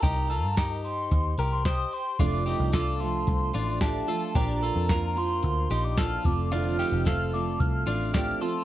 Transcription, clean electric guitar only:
X:1
M:4/4
L:1/8
Q:1/4=111
K:Fmix
V:1 name="Clean electric guitar"
[EG] [FA] [EG]3 [GB] [Gc]2 | [DF] [EG] [FA]3 [DF] [DG] [FA] | [DG] [FA] [FB]3 [EG] [FA]2 | [DF] [EG] [FA]3 [DF] [DG] [FA] |]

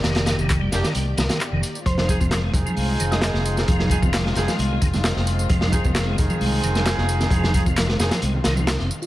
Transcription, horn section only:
X:1
M:4/4
L:1/8
Q:1/4=132
K:Fdor
V:1 name="Horn section"
z3 [DEG] z4 | z [EFA] z [EFA]4- [EFA]- | [EFA] [EFA] z [EFA] z4 | z [EFA] z [EFA]4- [EFA]- |
[EFA] [EFA] z [EFA] z4 |]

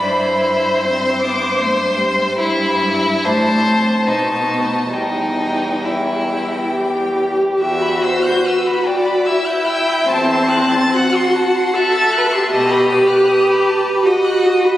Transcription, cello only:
X:1
M:3/4
L:1/16
Q:1/4=74
K:Clyd
V:1 name="Cello" clef=bass
G,,12 | [K:Em] G,,4 A,,4 B,,4 | E,,8- E,,3 z | E,,4 z8 |
E,,4 z8 | B,,4 z8 |]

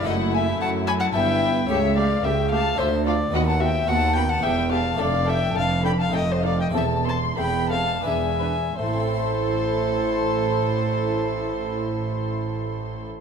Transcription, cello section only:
X:1
M:3/4
L:1/8
Q:1/4=103
K:Am
V:1 name="Cello section" clef=bass
^F,,2 ^F,2 G,,2 | ^C,,2 C,,2 D,,2 | ^D,,2 D,,2 E,,2 | F,,2 F,,2 F,,2 |
E,,2 E,,2 E,,2 | A,,6- | A,,6 |]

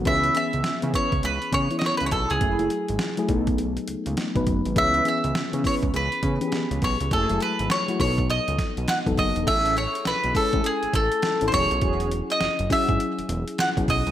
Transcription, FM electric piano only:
X:1
M:4/4
L:1/16
Q:"Swing 16ths" 1/4=102
K:C#m
V:1 name="FM electric piano"
[E,B,CG] z [E,B,CG]2 z [E,B,CG]4 z [E,B,CG] [E,B,CE]4 z | z [F,A,EG]3 z [F,A,EG] [F,A,B,D]6 z [F,B,DB]2 z | [E,B,CG] z [E,B,CG]2 z [E,B,CG]4 z [E,B,CG] [E,B,C=G^G]4 z | z [F,G,A,EG]3 z [F,A,EF] [F,B,DA]6 z [F,B,DA]2 z |
[CEGA]4 z2 [G,CEA] [CEGA]4 z2 [G,CEA] [F,CE=G^G]2- | [F,CE=G^G]4 z2 [F,CEG] [F,CEG]4 z2 [F,CEG]2 z |]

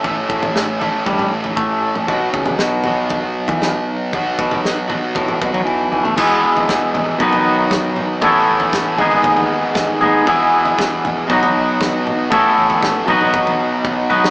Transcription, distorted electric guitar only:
X:1
M:4/4
L:1/8
Q:1/4=117
K:Bmix
V:1 name="Distorted electric guitar"
[A,,A,CEA]3 [A,,A,CEA]4- [A,,A,CEA] | [B,,F,B,F]3 [B,,F,B,F]4- [B,,F,B,F] | [B,,F,B,F]3 [B,,F,B,F]4- [B,,F,B,F] | [E,,B,,E,G,B,G]4 [B,,F,B,DF]4 |
[A,,E,A,CA]3 [G,,D,G,B,DG]4- [G,,D,G,B,DG] | [E,,B,,E,B,EG]4 [B,,F,B,DF]4 | [A,,E,A,CA]3 [B,,F,B,DF]4- [B,,F,B,DF] |]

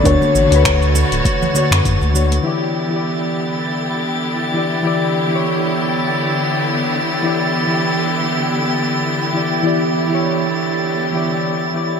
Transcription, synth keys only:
X:1
M:4/4
L:1/16
Q:"Swing 16ths" 1/4=100
K:Edor
V:1 name="Synth keys"
[D,DFc]3 [D,DFB]6- [D,DFB] [D,DFc]4 [D,DFc]2 | [E,EGd]3 [E,EGd]8- [E,EGd]3 [E,EGd]2 | [E,EGd]3 [E,EGc]12- [E,EGc] | [E,EGd]3 [E,EGd]8- [E,EGd]3 [E,EGd]2 |
[E,EGd]3 [E,EGc]6- [E,EGc] [E,EGd]4 [E,EGd]2 |]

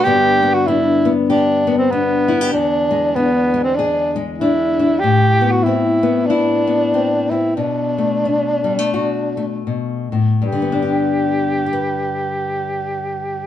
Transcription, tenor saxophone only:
X:1
M:4/4
L:1/16
Q:"Swing" 1/4=94
K:G
V:1 name="Tenor saxophone"
G3 F E4 D3 C B,4 | D4 B,3 C D2 z2 E4 | G3 F E4 D6 E2 | D12 z4 |
G16 |]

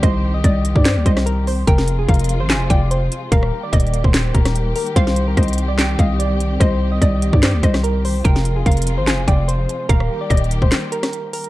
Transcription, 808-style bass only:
X:1
M:4/4
L:1/16
Q:1/4=146
K:Cm
V:1 name="808-style bass" clef=bass
C,,4 C,,3 G,,2 D,, C,,6 | F,,,4 F,,,3 A,,,3/2 F,,,3/2 F,,,4 z2 | E,,,2 z2 E,,,3 E,,,3 E,,,4 z2 | C,,4 C,,6 C,,6 |
C,,4 C,,3 G,,2 D,, C,,6 | F,,,4 F,,,3 A,,,3/2 F,,,3/2 F,,,4 z2 | E,,,2 z2 E,,,3 E,,, z8 |]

